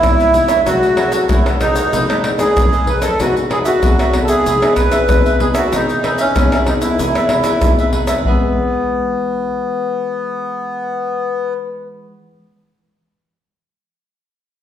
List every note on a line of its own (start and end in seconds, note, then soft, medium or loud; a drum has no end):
0.00 0.63 G#2 medium
0.00 0.61 E4 loud
0.00 0.17 B4 medium
0.00 0.16 C#5 medium
0.00 0.16 E5 medium
0.00 pandeiro medium
0.00 tamborim medium
0.00 shaker medium
0.00 surdo medium
0.04 0.30 E3 medium
0.04 0.30 B3 medium
0.04 0.30 D#4 medium
0.19 0.32 B4 medium
0.19 0.32 C#5 medium
0.19 0.33 E5 medium
0.19 pandeiro soft
0.19 shaker soft
0.33 0.53 E3 medium
0.33 0.53 B3 medium
0.33 0.53 D#4 medium
0.33 0.48 E4 soft
0.33 0.47 B4 soft
0.33 0.47 C#5 medium
0.33 0.46 E5 soft
0.33 pandeiro medium
0.33 shaker medium
0.47 0.64 B4 medium
0.47 0.64 C#5 medium
0.47 0.63 E5 medium
0.47 pandeiro medium
0.47 tamborim medium
0.47 shaker medium
0.66 1.27 F#3 medium
0.66 0.76 A3 medium
0.66 0.81 E4 soft
0.66 0.76 E4 medium
0.66 1.25 F#4 loud
0.66 0.76 G#4 medium
0.66 0.81 A4 soft
0.66 0.81 C#5 soft
0.66 0.81 F#5 soft
0.66 pandeiro medium
0.66 tamborim medium
0.66 shaker medium
0.66 surdo medium
0.83 1.25 A3 medium
0.83 1.25 E4 medium
0.83 1.26 G#4 medium
0.83 muted cavaquinho stroke soft
0.83 pandeiro soft
0.83 shaker soft
0.97 1.12 E4 medium
0.97 1.12 A4 medium
0.97 1.12 C#5 medium
0.97 1.11 F#5 medium
0.97 pandeiro medium
0.97 tamborim medium
1.12 1.28 A4 medium
1.12 1.28 C#5 medium
1.12 1.27 F#5 medium
1.12 pandeiro medium
1.12 shaker medium
1.29 1.90 C#3 medium
1.29 1.48 A3 medium
1.29 1.44 E4 medium
1.29 1.49 E4 medium
1.29 1.45 E4 soft
1.29 1.49 G#4 medium
1.29 1.45 A4 soft
1.29 1.45 C#5 soft
1.29 1.45 F#5 soft
1.29 pandeiro medium
1.29 tamborim medium
1.29 shaker medium
1.29 surdo loud
1.46 1.75 A4 medium
1.46 1.75 C#5 medium
1.46 1.74 F#5 medium
1.46 pandeiro soft
1.46 tamborim medium
1.46 shaker soft
1.60 1.81 A3 medium
1.60 2.22 D#4 medium
1.60 1.82 E4 medium
1.60 1.82 G#4 medium
1.60 pandeiro medium
1.60 tamborim medium
1.60 shaker medium
1.75 1.91 A4 soft
1.75 1.91 C#5 medium
1.75 1.91 F#5 medium
1.75 pandeiro medium
1.75 shaker medium
1.92 2.53 B2 medium
1.92 2.04 A3 medium
1.92 2.07 D#4 soft
1.92 2.04 D#4 medium
1.92 2.05 G#4 medium
1.92 2.07 A4 soft
1.92 2.08 B4 medium
1.92 2.07 D#5 medium
1.92 pandeiro medium
1.92 shaker medium
1.92 surdo medium
2.09 2.36 A3 medium
2.09 2.37 D#4 medium
2.09 2.37 G#4 medium
2.09 2.23 A4 medium
2.09 2.23 B4 medium
2.09 2.23 D#5 medium
2.09 pandeiro soft
2.09 tamborim medium
2.09 shaker soft
2.24 2.31 D#4 medium
2.24 muted cavaquinho stroke soft
2.24 pandeiro medium
2.24 tamborim medium
2.38 2.51 A3 medium
2.38 2.51 D#4 medium
2.38 2.89 G#4 medium
2.38 2.51 G#4 medium
2.38 2.70 B4 medium
2.38 2.70 D#5 medium
2.38 pandeiro medium
2.38 tamborim medium
2.38 shaker medium
2.57 3.17 F#2 medium
2.57 2.98 A3 medium
2.57 2.98 D#4 medium
2.57 2.98 G#4 medium
2.57 pandeiro medium
2.57 tamborim medium
2.57 shaker medium
2.57 surdo loud
2.73 2.87 A4 medium
2.73 2.87 B4 medium
2.73 2.87 D#5 medium
2.73 pandeiro soft
2.73 shaker soft
2.87 3.02 D#4 soft
2.87 3.02 A4 soft
2.87 3.02 B4 medium
2.87 3.01 B4 medium
2.87 3.01 D#5 medium
2.87 pandeiro medium
3.02 3.19 A4 loud
3.02 3.18 A4 medium
3.02 3.17 B4 medium
3.02 3.17 D#5 medium
3.02 pandeiro medium
3.02 tamborim medium
3.02 shaker medium
3.19 3.80 E3 medium
3.19 3.29 B3 medium
3.19 3.34 D#4 soft
3.19 3.29 D#4 medium
3.19 3.35 F#4 loud
3.19 3.34 G#4 soft
3.19 3.30 G#4 medium
3.19 3.34 B4 soft
3.19 3.35 E5 medium
3.19 pandeiro medium
3.19 tamborim medium
3.19 shaker medium
3.19 surdo medium
3.36 3.78 B3 medium
3.36 3.79 D#4 medium
3.36 3.79 G#4 medium
3.36 muted cavaquinho stroke soft
3.36 pandeiro soft
3.36 shaker soft
3.50 3.65 D#4 medium
3.50 3.64 G#4 medium
3.50 3.58 G#4 medium
3.50 3.64 B4 medium
3.50 3.63 E5 medium
3.50 pandeiro medium
3.50 tamborim medium
3.64 4.19 F#4 medium
3.64 3.81 G#4 medium
3.64 3.80 B4 medium
3.64 3.80 E5 medium
3.64 pandeiro medium
3.64 shaker medium
3.82 4.43 B2 medium
3.82 4.01 B3 medium
3.82 3.97 D#4 soft
3.82 4.02 D#4 medium
3.82 3.97 G#4 soft
3.82 4.02 G#4 medium
3.82 3.97 B4 soft
3.82 3.97 E5 soft
3.82 pandeiro medium
3.82 tamborim medium
3.82 shaker medium
3.82 surdo loud
3.99 4.28 G#4 medium
3.99 4.28 B4 medium
3.99 4.27 E5 medium
3.99 pandeiro soft
3.99 tamborim medium
3.99 shaker soft
4.13 4.56 B3 medium
4.13 4.57 D#4 medium
4.13 4.57 G#4 medium
4.13 pandeiro medium
4.13 tamborim medium
4.22 4.30 A4 medium
4.28 4.73 G#4 medium
4.28 4.44 G#4 soft
4.28 4.44 B4 medium
4.28 4.44 E5 medium
4.28 pandeiro medium
4.28 shaker medium
4.46 5.06 E3 medium
4.46 4.61 D#4 soft
4.46 4.61 G#4 medium
4.46 4.61 B4 soft
4.46 4.62 E5 soft
4.46 pandeiro medium
4.46 shaker medium
4.46 surdo medium
4.62 4.88 B3 medium
4.62 4.89 D#4 medium
4.62 4.89 G#4 medium
4.62 4.76 G#4 medium
4.62 4.77 B4 medium
4.62 4.77 E5 medium
4.62 pandeiro soft
4.62 tamborim medium
4.62 shaker soft
4.76 5.36 B4 loud
4.76 pandeiro medium
4.76 tamborim medium
4.76 shaker medium
4.76 surdo medium
4.92 5.03 B3 medium
4.92 5.03 D#4 medium
4.92 5.03 G#4 medium
4.92 5.23 G#4 medium
4.92 5.23 B4 medium
4.92 5.23 E5 medium
4.92 pandeiro medium
4.92 tamborim medium
4.92 shaker medium
5.09 5.69 B2 medium
5.09 5.36 B3 medium
5.09 5.36 D#4 medium
5.09 5.36 G#4 medium
5.09 pandeiro medium
5.09 tamborim medium
5.09 shaker medium
5.09 surdo loud
5.26 5.38 G#4 soft
5.26 5.39 B4 medium
5.26 5.40 E5 medium
5.26 pandeiro soft
5.26 shaker soft
5.39 5.59 B3 medium
5.39 5.54 D#4 soft
5.39 5.59 D#4 medium
5.39 5.54 G#4 medium
5.39 5.48 G#4 medium
5.39 5.59 G#4 medium
5.39 5.53 B4 medium
5.39 5.53 E5 medium
5.39 pandeiro medium
5.54 5.73 F#4 loud
5.54 5.70 G#4 medium
5.54 5.70 B4 medium
5.54 5.70 E5 medium
5.54 pandeiro medium
5.54 tamborim medium
5.54 shaker medium
5.71 6.33 E3 medium
5.71 6.31 B3 soft
5.71 5.86 D#4 soft
5.71 6.31 D#4 medium
5.71 6.22 D#4 medium
5.71 5.86 G#4 soft
5.71 6.31 G#4 medium
5.71 5.87 B4 soft
5.71 5.87 E5 soft
5.71 pandeiro medium
5.71 tamborim medium
5.71 shaker medium
5.71 surdo medium
5.88 muted cavaquinho stroke soft
5.88 pandeiro soft
5.88 shaker soft
6.03 6.18 D#4 medium
6.03 6.18 G#4 medium
6.03 6.18 B4 medium
6.03 6.17 E5 medium
6.03 pandeiro medium
6.03 tamborim medium
6.18 6.69 C#4 medium
6.18 6.34 G#4 medium
6.18 6.34 B4 medium
6.18 6.34 E5 medium
6.18 pandeiro medium
6.18 shaker medium
6.36 6.96 B2 medium
6.36 6.55 B3 medium
6.36 6.50 D#4 soft
6.36 6.55 D#4 medium
6.36 6.50 G#4 soft
6.36 6.55 G#4 medium
6.36 6.51 B4 soft
6.36 6.51 E5 medium
6.36 pandeiro medium
6.36 tamborim medium
6.36 shaker medium
6.36 surdo medium
6.52 6.81 G#4 soft
6.52 6.80 B4 medium
6.52 6.80 E5 medium
6.52 pandeiro soft
6.52 tamborim medium
6.52 shaker soft
6.67 6.97 B3 medium
6.67 6.74 D#4 medium
6.67 6.97 D#4 medium
6.67 6.97 G#4 medium
6.67 pandeiro medium
6.67 tamborim medium
6.81 7.73 E4 medium
6.81 6.97 G#4 soft
6.81 6.97 B4 medium
6.81 6.96 E5 medium
6.81 pandeiro medium
6.81 shaker medium
6.98 7.59 E3 medium
6.98 7.13 D#4 soft
6.98 7.13 G#4 medium
6.98 7.13 B4 soft
6.98 7.14 E5 medium
6.98 pandeiro medium
6.98 shaker medium
6.98 surdo medium
7.15 7.58 B3 medium
7.15 7.29 G#4 soft
7.15 7.58 G#4 medium
7.15 7.30 B4 medium
7.15 7.30 E5 medium
7.15 pandeiro soft
7.15 tamborim medium
7.15 shaker soft
7.29 muted cavaquinho stroke soft
7.29 pandeiro medium
7.29 tamborim medium
7.44 7.77 B4 medium
7.44 7.76 E5 medium
7.44 pandeiro medium
7.44 tamborim medium
7.44 shaker medium
7.48 7.77 G#4 medium
7.61 8.22 B2 medium
7.61 8.21 B3 medium
7.61 8.21 D#4 medium
7.61 8.21 G#4 medium
7.61 pandeiro medium
7.61 tamborim medium
7.61 shaker medium
7.61 surdo loud
7.79 7.92 G#4 medium
7.79 7.93 B4 medium
7.79 7.93 E5 medium
7.79 pandeiro soft
7.79 shaker soft
7.93 8.08 D#4 soft
7.93 8.08 G#4 medium
7.93 8.08 B4 soft
7.93 8.06 E5 medium
7.93 pandeiro medium
8.07 8.24 G#4 medium
8.07 8.23 B4 medium
8.07 8.23 E5 medium
8.07 pandeiro medium
8.07 tamborim medium
8.07 shaker medium
8.23 12.07 E3 medium
8.23 11.54 B3 medium
8.23 12.11 G#4 medium
8.23 surdo medium
8.27 12.13 G#3 medium
8.27 12.12 B4 medium
8.27 12.12 E5 medium
8.33 12.18 B3 medium